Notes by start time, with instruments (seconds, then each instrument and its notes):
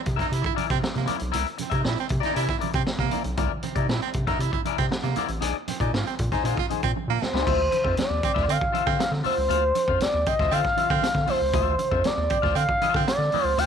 0.06 analog synth bass C3, kick, closed hi-hat, muted conga
0.16 clean electric guitar E4 A#4 E5, kick, snare, closed hi-hat
0.21 baritone saxophone D#4
0.29 analog synth bass C3, muted clean electric guitar stroke, closed hi-hat
0.33 baritone saxophone E4
0.42 baritone saxophone E4, muted clean electric guitar stroke, kick, closed hi-hat
0.55 analog synth bass C3, clean electric guitar E4 A#4 D5, closed hi-hat, muted conga, high conga
0.68 analog synth bass C3, baritone saxophone C4, muted clean electric guitar stroke, kick, snare, closed hi-hat
0.80 muted clean electric guitar stroke, snare, muted conga, high conga
0.94 analog synth bass C3, baritone saxophone A#3, muted clean electric guitar stroke, snare, closed hi-hat, high conga, low conga
1.06 clean electric guitar E4 A#4 D5, closed hi-hat, muted conga, high conga, low conga
1.19 analog synth bass B1, muted clean electric guitar stroke, closed hi-hat
1.32 analog synth bass C2, clean electric guitar E4 A#4 E5, closed hi-hat, muted conga, low conga
1.46 closed hi-hat
1.58 analog synth bass C3, baritone saxophone C4, muted clean electric guitar stroke, closed hi-hat, muted conga, high conga
1.70 analog synth bass C3, clean electric guitar E4 A#4 E5, kick, closed hi-hat
1.74 baritone saxophone D#4
1.83 analog synth bass A#2, muted clean electric guitar stroke, snare, muted conga, high conga
1.88 baritone saxophone E4
1.95 muted clean electric guitar stroke, closed hi-hat
2.00 baritone saxophone C4
2.09 analog synth bass C3, kick, closed hi-hat, muted conga
2.20 clean electric guitar E4 A#4 D5, snare, closed hi-hat
2.25 baritone saxophone D#4
2.34 analog synth bass C3, clean electric guitar E4 A#4 D5, baritone saxophone E4, closed hi-hat
2.47 baritone saxophone E4, muted clean electric guitar stroke, kick, snare
2.59 analog synth bass C3, clean electric guitar E4 A#4 D5, closed hi-hat, muted conga, high conga
2.73 analog synth bass C3, baritone saxophone C4, muted clean electric guitar stroke, kick, closed hi-hat
2.86 muted clean electric guitar stroke, snare, muted conga, high conga
2.99 analog synth bass C3, baritone saxophone A#3, kick, snare, closed hi-hat, high conga, low conga
3.11 clean electric guitar E4 A#4 D5, closed hi-hat, high conga, low conga
3.24 analog synth bass B1, closed hi-hat
3.37 analog synth bass C2, clean electric guitar E4 A#4 D5, kick, closed hi-hat, low conga
3.63 analog synth bass C3, baritone saxophone C4, muted clean electric guitar stroke, closed hi-hat, high conga
3.75 analog synth bass C3, baritone saxophone D#4, clean electric guitar E4 A#4 D5, kick, closed hi-hat
3.88 analog synth bass A#2, baritone saxophone E4, snare, muted conga, high conga
4.01 baritone saxophone C4, muted clean electric guitar stroke, closed hi-hat
4.13 analog synth bass C3, kick, closed hi-hat, muted conga
4.27 baritone saxophone D#4, clean electric guitar E4 A#4 E5, kick, snare, closed hi-hat
4.39 analog synth bass C3, baritone saxophone E4, muted clean electric guitar stroke, closed hi-hat
4.52 baritone saxophone E4, muted clean electric guitar stroke, kick, closed hi-hat
4.65 analog synth bass C3, clean electric guitar E4 A#4 D5, closed hi-hat, muted conga, high conga
4.78 analog synth bass C3, baritone saxophone C4, muted clean electric guitar stroke, kick, snare, closed hi-hat
4.91 muted clean electric guitar stroke, snare, high conga
5.03 analog synth bass C3, baritone saxophone A#3, muted clean electric guitar stroke, snare, closed hi-hat, high conga, low conga
5.16 clean electric guitar E4 A#4 D5, closed hi-hat, high conga, low conga
5.28 analog synth bass A1, muted clean electric guitar stroke, closed hi-hat
5.41 analog synth bass A#1, clean electric guitar D#4 G#4 D5, closed hi-hat, low conga
5.68 analog synth bass A#2, baritone saxophone C4, muted clean electric guitar stroke, closed hi-hat, high conga
5.80 analog synth bass A#2, baritone saxophone D#4, clean electric guitar D#4 G#4 D5, kick, closed hi-hat
5.93 analog synth bass G#2, baritone saxophone F4, muted clean electric guitar stroke, snare, high conga
6.06 baritone saxophone C4, muted clean electric guitar stroke, closed hi-hat
6.19 analog synth bass A#2, kick, closed hi-hat
6.32 baritone saxophone D#4, clean electric guitar D#4 G#4 C5, kick, snare, closed hi-hat
6.43 analog synth bass A#2, clean electric guitar D#4 G#4 C5, baritone saxophone F4, closed hi-hat, muted conga
6.57 baritone saxophone F4, muted clean electric guitar stroke, kick, snare, closed hi-hat
6.70 analog synth bass A#2, clean electric guitar D#4 G#4 C5, closed hi-hat, high conga
6.83 analog synth bass A#2, baritone saxophone C4, kick, closed hi-hat
6.96 muted clean electric guitar stroke, high conga
7.08 analog synth bass A#2, baritone saxophone A#3, muted clean electric guitar stroke, high conga, low conga
7.22 analog synth lead C5, snare, high conga, low conga
7.33 analog synth bass C#2, clean electric guitar D#4 G#4 C5, snare
7.46 analog synth bass D2, clean electric guitar F4 C5 E5, kick, crash, low conga
7.71 muted clean electric guitar stroke, closed hi-hat, high conga
7.84 analog synth bass F2, clean electric guitar F4 C5 E5, kick
7.97 analog synth bass D#2, muted clean electric guitar stroke, snare, closed hi-hat, muted conga, high conga
8.01 analog synth lead D5
8.09 analog synth bass D#2, muted clean electric guitar stroke
8.23 baritone saxophone C4, kick, closed hi-hat
8.34 analog synth bass D2, clean electric guitar F4 C5 F5, kick, snare
8.47 analog synth bass D3, baritone saxophone C4, analog synth lead F5, muted clean electric guitar stroke, closed hi-hat
8.61 muted clean electric guitar stroke, kick
8.72 analog synth bass D3, clean electric guitar F4 C5 E5, closed hi-hat, high conga
8.86 analog synth bass D3, baritone saxophone C4, muted clean electric guitar stroke, kick, snare
8.99 analog synth lead F5, muted clean electric guitar stroke, snare, closed hi-hat, muted conga, high conga
9.11 analog synth bass D3, muted clean electric guitar stroke, snare
9.24 clean electric guitar F4 C5 E5, analog synth lead C5, open hi-hat, high conga, low conga
9.36 analog synth bass C#2, muted clean electric guitar stroke
9.49 analog synth bass D2, clean electric guitar F4 C5 F5, closed hi-hat, muted conga, low conga
9.75 muted clean electric guitar stroke, closed hi-hat, muted conga, high conga
9.88 analog synth bass F2, clean electric guitar F4 C5 F5, kick
10.00 analog synth bass D#2, analog synth lead D5, muted clean electric guitar stroke, snare, closed hi-hat, muted conga, high conga
10.14 analog synth bass D#2, muted clean electric guitar stroke
10.26 baritone saxophone C4, analog synth lead D#5, kick, closed hi-hat
10.39 analog synth bass D2, clean electric guitar F4 C5 E5, kick, snare
10.51 analog synth bass D3, baritone saxophone C4, clean electric guitar F4 C5 E5, analog synth lead F5, closed hi-hat
10.64 muted clean electric guitar stroke, kick, snare
10.77 analog synth bass D3, clean electric guitar F4 C5 E5, closed hi-hat, muted conga, high conga
10.90 analog synth bass D3, baritone saxophone C4, kick
11.02 snare, closed hi-hat, high conga
11.15 analog synth bass D3, muted clean electric guitar stroke, kick, snare
11.26 clean electric guitar F4 C5 E5, analog synth lead C5, open hi-hat, high conga, low conga
11.41 analog synth bass C#2, muted clean electric guitar stroke
11.53 analog synth bass D2, clean electric guitar F4 C5 E5, kick, closed hi-hat, muted conga, low conga
11.79 muted clean electric guitar stroke, closed hi-hat, muted conga, high conga
11.91 analog synth bass F2, clean electric guitar F4 C5 E5, kick
12.04 analog synth bass D#2, analog synth lead D5, muted clean electric guitar stroke, snare, closed hi-hat, muted conga, high conga
12.17 analog synth bass D#2, muted clean electric guitar stroke
12.30 baritone saxophone C4, kick, closed hi-hat
12.42 analog synth bass D2, clean electric guitar F4 C5 F5, kick, snare
12.55 analog synth bass D3, baritone saxophone C4, analog synth lead F5, muted clean electric guitar stroke, closed hi-hat
12.69 muted clean electric guitar stroke, kick
12.81 analog synth bass D3, clean electric guitar F4 C5 E5, closed hi-hat, muted conga, high conga
12.94 analog synth bass D3, baritone saxophone C4, muted clean electric guitar stroke, kick, snare
13.07 analog synth lead D5, muted clean electric guitar stroke, snare, closed hi-hat, muted conga, high conga
13.18 analog synth bass D3, muted clean electric guitar stroke, snare
13.32 clean electric guitar F4 C5 E5, open hi-hat, muted conga, high conga, low conga
13.44 analog synth bass C#2, analog synth lead C5, muted clean electric guitar stroke
13.57 analog synth bass D2, clean electric guitar F4 C5 F5, analog synth lead G5, closed hi-hat, low conga